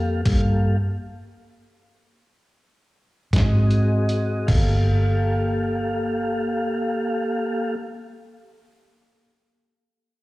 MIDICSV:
0, 0, Header, 1, 4, 480
1, 0, Start_track
1, 0, Key_signature, -2, "minor"
1, 0, Tempo, 662252
1, 183, Time_signature, 12, 3, 24, 8
1, 1631, Tempo, 726392
1, 2591, Tempo, 797872
1, 6517, End_track
2, 0, Start_track
2, 0, Title_t, "Tonewheel organ"
2, 0, Program_c, 0, 16
2, 0, Note_on_c, 0, 58, 63
2, 0, Note_on_c, 0, 67, 60
2, 0, Note_on_c, 0, 69, 62
2, 0, Note_on_c, 0, 77, 61
2, 153, Note_off_c, 0, 67, 0
2, 154, Note_off_c, 0, 69, 0
2, 154, Note_off_c, 0, 77, 0
2, 156, Note_off_c, 0, 58, 0
2, 181, Note_on_c, 0, 67, 61
2, 184, Note_on_c, 0, 58, 62
2, 185, Note_on_c, 0, 69, 59
2, 187, Note_on_c, 0, 77, 63
2, 553, Note_off_c, 0, 67, 0
2, 555, Note_off_c, 0, 58, 0
2, 555, Note_off_c, 0, 69, 0
2, 556, Note_off_c, 0, 77, 0
2, 2348, Note_on_c, 0, 66, 54
2, 2349, Note_on_c, 0, 75, 57
2, 2353, Note_on_c, 0, 68, 59
2, 2356, Note_on_c, 0, 60, 59
2, 3052, Note_on_c, 0, 77, 56
2, 3055, Note_on_c, 0, 67, 61
2, 3056, Note_off_c, 0, 66, 0
2, 3056, Note_off_c, 0, 75, 0
2, 3057, Note_on_c, 0, 69, 61
2, 3058, Note_off_c, 0, 68, 0
2, 3058, Note_on_c, 0, 58, 55
2, 3059, Note_off_c, 0, 60, 0
2, 5021, Note_off_c, 0, 77, 0
2, 5024, Note_off_c, 0, 67, 0
2, 5026, Note_off_c, 0, 69, 0
2, 5027, Note_off_c, 0, 58, 0
2, 6517, End_track
3, 0, Start_track
3, 0, Title_t, "Fingered electric bass"
3, 0, Program_c, 1, 33
3, 0, Note_on_c, 1, 41, 73
3, 163, Note_off_c, 1, 41, 0
3, 190, Note_on_c, 1, 43, 68
3, 550, Note_off_c, 1, 43, 0
3, 2345, Note_on_c, 1, 44, 73
3, 3040, Note_off_c, 1, 44, 0
3, 3063, Note_on_c, 1, 31, 75
3, 5028, Note_off_c, 1, 31, 0
3, 6517, End_track
4, 0, Start_track
4, 0, Title_t, "Drums"
4, 185, Note_on_c, 9, 42, 66
4, 185, Note_on_c, 9, 49, 64
4, 186, Note_on_c, 9, 36, 88
4, 257, Note_off_c, 9, 42, 0
4, 257, Note_off_c, 9, 49, 0
4, 259, Note_off_c, 9, 36, 0
4, 2345, Note_on_c, 9, 36, 74
4, 2347, Note_on_c, 9, 42, 70
4, 2365, Note_on_c, 9, 38, 89
4, 2411, Note_off_c, 9, 36, 0
4, 2413, Note_off_c, 9, 42, 0
4, 2431, Note_off_c, 9, 38, 0
4, 2593, Note_on_c, 9, 42, 50
4, 2653, Note_off_c, 9, 42, 0
4, 2823, Note_on_c, 9, 42, 49
4, 2884, Note_off_c, 9, 42, 0
4, 3059, Note_on_c, 9, 49, 68
4, 3060, Note_on_c, 9, 36, 85
4, 3119, Note_off_c, 9, 49, 0
4, 3121, Note_off_c, 9, 36, 0
4, 6517, End_track
0, 0, End_of_file